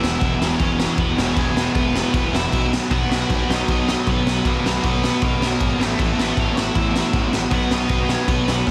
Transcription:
Already playing: distorted electric guitar E2 B2 E3, overdriven electric guitar E4 E5
0.02 picked electric bass E1, snare
0.21 picked electric bass E1, kick, crash
0.41 picked electric bass E1, overdriven electric guitar C#4 C#5, snare
0.60 picked electric bass E1, kick, crash
0.80 snare
0.97 picked electric bass E1, overdriven electric guitar B3 B4, kick, crash
1.16 picked electric bass E1, distorted electric guitar E2 B2 E3, overdriven electric guitar A#3 A#4, snare
1.28 overdriven electric guitar F#4
1.36 picked electric bass E1, overdriven electric guitar G#3 G#4, kick, crash
1.54 picked electric bass E1, snare
1.74 picked electric bass E1, overdriven electric guitar B3 B4, kick, crash
1.96 snare
2.13 picked electric bass E1, overdriven electric guitar B3 B4, kick, crash
2.32 picked electric bass E1, overdriven electric guitar E4 E5, snare
2.52 picked electric bass B1, kick, crash
2.73 snare
2.91 picked electric bass B1, distorted electric guitar B2 F#3 B3, overdriven electric guitar F#4, kick, crash
2.95 overdriven electric guitar F#5
3.09 picked electric bass B1, snare
3.30 picked electric bass B1, kick, crash
3.49 picked electric bass B1, overdriven electric guitar D#4 D#5, snare
3.68 picked electric bass B1, kick, crash
3.88 snare
4.07 picked electric bass B1, overdriven electric guitar B3 B4, kick, crash
4.25 picked electric bass B1, snare
4.44 picked electric bass B1, distorted electric guitar B2 F#3 B3, overdriven electric guitar A#3 A#4, kick, crash
4.64 picked electric bass B1, overdriven electric guitar A#3, snare
4.69 overdriven electric guitar A#4
4.84 picked electric bass B1, overdriven electric guitar B3 B4, kick, crash
5.04 snare
5.22 picked electric bass B1, overdriven electric guitar A#3 A#4, kick, crash
5.40 picked electric bass B1, overdriven electric guitar A#3, snare
5.46 overdriven electric guitar A#4
5.60 picked electric bass G#1, kick, crash
5.79 picked electric bass A1, distorted electric guitar A2 E3 A3, snare
5.99 picked electric bass A1, overdriven electric guitar A3 A4, kick, crash
6.18 picked electric bass A1, overdriven electric guitar B3, snare
6.22 overdriven electric guitar B4
6.37 picked electric bass A1, overdriven electric guitar C#4 C#5, kick, crash
6.56 picked electric bass A1, overdriven electric guitar E4 E5, snare
6.75 picked electric bass A1, overdriven electric guitar E4 E5, kick, crash
6.95 overdriven electric guitar E4 E5, snare
7.13 picked electric bass A1, kick, crash
7.32 picked electric bass A1, snare
7.51 picked electric bass B1, distorted electric guitar B2 F#3 B3, overdriven electric guitar F#4 F#5, kick, crash
7.71 picked electric bass B1, overdriven electric guitar D#4 D#5, snare
7.89 picked electric bass B1, kick, crash
8.09 overdriven electric guitar C#4 C#5, snare
8.27 picked electric bass B1, overdriven electric guitar B3 B4, kick, crash
8.48 picked electric bass B1, overdriven electric guitar B3 B4, snare
8.67 picked electric bass D#2, kick, snare

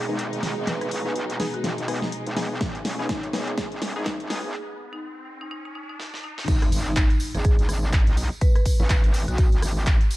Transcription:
Already playing: string section B2 G#3 D#4, ambient pad G#4 D#5 G#5, riser
0.09 wobble bass G#1, synth stab B3 D#4 G#4
0.19 closed hi-hat
0.33 closed hi-hat
0.43 wobble bass B1, snare, open hi-hat
0.57 wobble bass G#1
0.67 marimba B4, snare, closed hi-hat
0.81 marimba B4, cross-stick, closed hi-hat
0.91 wobble bass A1, open hi-hat
1.06 synth stab B3 D#4 G#4, marimba B4
1.16 wobble bass B1, closed hi-hat
1.30 closed hi-hat
1.40 synth stab B3 D#4 G#4, snare, open hi-hat
1.54 marimba F#4, closed hi-hat
1.64 wobble bass G#1, snare, closed hi-hat
1.78 wobble bass G#1, closed hi-hat
1.88 synth stab B3 D#4 G#4, cross-stick, open hi-hat
2.02 snare
2.12 closed hi-hat
2.26 wobble bass G#1, closed hi-hat
2.37 synth stab B3 D#4 G#4, snare, open hi-hat
2.51 wobble bass G#1
2.61 wobble bass G#1, string section C#4, kick, snare, closed hi-hat
2.75 closed hi-hat
2.85 wobble bass A1, snare, open hi-hat
2.99 synth stab B3 D#4 G#4, marimba D#4
3.09 wobble bass G#1, marimba D#4, kick, snare, closed hi-hat
3.23 closed hi-hat
3.33 wobble bass G#1, synth stab B3 D#4 G#4, snare, open hi-hat
3.48 marimba G#4, closed hi-hat
3.58 wobble bass G#1, kick, snare, closed hi-hat
3.72 wobble bass G#1, closed hi-hat
3.82 snare, open hi-hat
3.96 wobble bass G#1, synth stab B3 D#4 G#4, marimba D#4
4.06 marimba D#4, kick, snare, closed hi-hat
4.20 closed hi-hat
4.30 wobble bass B1, synth stab B3 D#4 G#4, snare, open hi-hat
4.44 wobble bass G#1, marimba G#4
4.93 marimba D#4
5.41 marimba D#4
5.51 marimba D#4
5.65 marimba D#4
5.75 marimba D#4
5.89 marimba D#4
6.00 marimba D#4, snare
6.14 marimba D#4, snare
6.24 marimba D#4
6.38 marimba D#4, snare
6.48 wobble bass G#1, kick, closed hi-hat, crash, tambourine, impact
6.62 cross-stick, closed hi-hat, tambourine
6.72 wobble bass G#1, open hi-hat, tambourine
6.86 marimba D#4, tambourine
6.96 marimba D#4, kick, clap, closed hi-hat, tambourine
7.10 closed hi-hat, tambourine
7.20 open hi-hat, tambourine
7.35 wobble bass G#1, marimba G#4, closed hi-hat, tambourine
7.44 marimba G#4, kick, closed hi-hat, tambourine
7.59 wobble bass B1, closed hi-hat, tambourine
7.69 wobble bass G#1, cross-stick, open hi-hat, tambourine
7.83 tambourine
7.93 kick, clap, closed hi-hat, tambourine
8.06 wobble bass B1, closed hi-hat, tambourine
8.17 open hi-hat, tambourine
8.32 tambourine
8.41 marimba B4, kick, closed hi-hat, tambourine
8.56 marimba B4, cross-stick, closed hi-hat, tambourine
8.66 kick, open hi-hat, tambourine
8.80 wobble bass A1, marimba B4, tambourine
8.90 kick, clap, closed hi-hat, tambourine
9.04 wobble bass G#1, closed hi-hat, tambourine
9.14 open hi-hat, tambourine
9.28 wobble bass B1, marimba F#4, closed hi-hat, tambourine
9.38 kick, closed hi-hat, tambourine
9.52 wobble bass B1, closed hi-hat, tambourine
9.62 wobble bass G#1, cross-stick, open hi-hat, tambourine
9.77 tambourine
9.87 kick, clap, closed hi-hat, tambourine
10.01 closed hi-hat, tambourine
10.11 open hi-hat, tambourine

